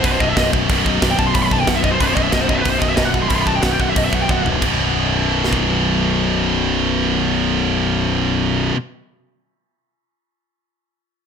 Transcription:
Already playing: distorted electric guitar B1 F#2 B2
0.04 fingered electric bass B0, lead electric guitar B4, kick, open hi-hat
0.12 lead electric guitar C5
0.20 fingered electric bass B0, lead electric guitar D#5, kick
0.29 lead electric guitar E5
0.37 fingered electric bass B0, lead electric guitar D#5, kick, snare, open hi-hat
0.53 kick
0.69 fingered electric bass B0, distorted electric guitar B1 F#2 B2, kick, open hi-hat
0.86 kick
1.02 fingered electric bass B0, kick, snare, open hi-hat
1.11 lead electric guitar G5
1.19 fingered electric bass B0, lead electric guitar A5, kick
1.27 lead electric guitar C6
1.34 fingered electric bass B0, lead electric guitar B5, kick, open hi-hat
1.42 lead electric guitar C6
1.46 lead electric guitar B5
1.51 fingered electric bass B0, lead electric guitar A5, kick
1.61 lead electric guitar G5
1.67 fingered electric bass B0, lead electric guitar F#5, kick, snare, open hi-hat
1.76 lead electric guitar E5
1.84 fingered electric bass B0, lead electric guitar D#5, kick
1.92 lead electric guitar C5
2.00 fingered electric bass B0, distorted electric guitar B1 F#2 B2, lead electric guitar B4, kick, open hi-hat
2.07 lead electric guitar C5
2.16 fingered electric bass B0, lead electric guitar D#5, kick
2.23 lead electric guitar E5
2.32 fingered electric bass B0, lead electric guitar D#5, kick, snare, open hi-hat
2.40 lead electric guitar C5
2.49 lead electric guitar D#5, kick
2.54 lead electric guitar C5 E5
2.62 fingered electric bass B0, lead electric guitar B4, kick, open hi-hat
2.70 lead electric guitar C5
2.79 fingered electric bass B0, lead electric guitar D#5, kick
2.89 lead electric guitar E5
2.96 fingered electric bass B0, lead electric guitar D#5, kick, snare, open hi-hat
3.05 lead electric guitar F#5
3.14 kick
3.22 lead electric guitar C6
3.29 fingered electric bass B0, distorted electric guitar B1 F#2, lead electric guitar B5, kick, open hi-hat
3.34 distorted electric guitar B2, lead electric guitar C6
3.41 lead electric guitar B5
3.46 lead electric guitar A5, kick
3.55 lead electric guitar G5
3.63 fingered electric bass B0, lead electric guitar F#5, kick, snare, open hi-hat
3.72 lead electric guitar G5
3.79 fingered electric bass B0, lead electric guitar F#5, kick
3.89 lead electric guitar E5
3.96 fingered electric bass B0, lead electric guitar D#5, kick, open hi-hat
4.05 lead electric guitar E5
4.13 fingered electric bass B0, lead electric guitar F#5, kick
4.22 lead electric guitar G5
4.29 fingered electric bass B0, lead electric guitar F#5, kick, high tom
4.45 fingered electric bass B0, floor tom
4.60 fingered electric bass B0, distorted electric guitar B1 F#2, kick, crash
4.65 distorted electric guitar B2
5.44 snare
5.53 kick

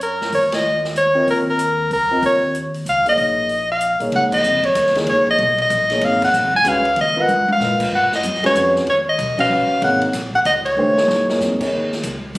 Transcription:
Already playing: upright bass F#2
0.01 soprano saxophone A#4, closed hi-hat
0.21 snare
0.32 upright bass D#2, soprano saxophone C#5, open hi-hat
0.52 soprano saxophone D#5, snare, ride
0.85 snare
0.96 soprano saxophone C#5, closed hi-hat
1.15 upright piano C4 F4 A#4 D#5
1.27 upright bass D#2, soprano saxophone A#4, open hi-hat
1.50 soprano saxophone A#4
1.59 closed hi-hat
1.90 upright bass C#2, soprano saxophone A#4, open hi-hat
2.11 upright piano C4 F4 A#4 D#5
2.22 upright bass D#2, soprano saxophone C#5, open hi-hat
2.55 closed hi-hat
2.74 open hi-hat
2.86 upright bass C#2, soprano saxophone F5, closed hi-hat
3.05 upright piano A#3 D#4 G#4 C#5, soprano saxophone D#5, open hi-hat
3.17 upright bass A#1, open hi-hat
3.49 open hi-hat
3.72 soprano saxophone F5
3.81 closed hi-hat
4.00 upright bass A#1, upright piano A#3 D#4 G#4 C#5, open hi-hat
4.12 upright bass C#2, soprano saxophone F#5, ride
4.32 soprano saxophone D#5, kick, crash
4.43 upright bass F2, hi-hat pedal
4.63 soprano saxophone C#5, kick, ride
4.75 upright bass D#2, hi-hat pedal, ride
4.86 snare
4.95 upright piano A#3 D#4 G#4 C#5, snare, ride
5.06 upright bass C#2, soprano saxophone C#5, ride
5.27 soprano saxophone D#5, kick
5.38 upright bass B1, ride
5.58 soprano saxophone D#5, ride
5.70 upright bass A#1, hi-hat pedal, ride
5.90 upright piano A#3 D#4 G#4 C#5, snare, ride
6.01 upright bass G#1, soprano saxophone F5, ride
6.22 soprano saxophone F#5, kick, crash
6.33 upright bass A#1, hi-hat pedal
6.43 upright bass G#1
6.53 upright bass F#1, soprano saxophone G#5, kick
6.64 upright bass C#2, upright piano G#3 C#4 F#4 B4, hi-hat pedal, ride
6.68 soprano saxophone F5
6.85 ride
6.96 upright bass D#2, ride
7.01 soprano saxophone D#5
7.16 upright piano B3 F4 A#4 D#5
7.21 soprano saxophone F#5
7.28 upright bass F#2, hi-hat pedal, high tom
7.48 high tom
7.52 soprano saxophone F5
7.60 upright bass A#2, upright piano F4 A#4 B4 D#5, snare
7.80 kick, crash
7.92 upright bass G#2, soprano saxophone F#5
8.12 soprano saxophone D#5, snare
8.23 upright bass F#2, hi-hat pedal, ride
8.34 snare
8.43 upright piano G#3 C#4 F#4 B4, soprano saxophone C#5, snare, ride
8.55 upright bass F2, hi-hat pedal, ride
8.76 snare
8.87 upright bass D#2, soprano saxophone C#5, ride
9.09 soprano saxophone D#5
9.18 upright bass B1, hi-hat pedal, ride
9.38 upright piano C#4 F#4 B4 F5, soprano saxophone F5, kick, crash
9.50 upright bass A#1
9.70 muted upright bass stroke
9.81 upright bass G#1, upright piano A#3 D#4 G#4 C#5, soprano saxophone F#5, ride
10.02 ride
10.13 upright bass A#1, snare, hi-hat pedal, ride
10.34 soprano saxophone F#5, kick
10.45 upright bass C#2, soprano saxophone D#5, hi-hat pedal, ride
10.66 soprano saxophone C#5, ride
10.77 upright bass D#2, upright piano A3 D4 G4 C5
10.96 upright piano A#3 D#4 G#4 C#5, snare
11.08 upright bass F#2, snare
11.29 upright piano A#3 D#4 G#4 C#5, snare
11.40 upright bass F2, snare, hi-hat pedal
11.60 upright piano A#3 D#4 G#4 C#5, kick, crash
11.72 upright bass D#2
11.92 snare
12.03 upright bass C#2, hi-hat pedal, ride
12.35 upright bass G#1

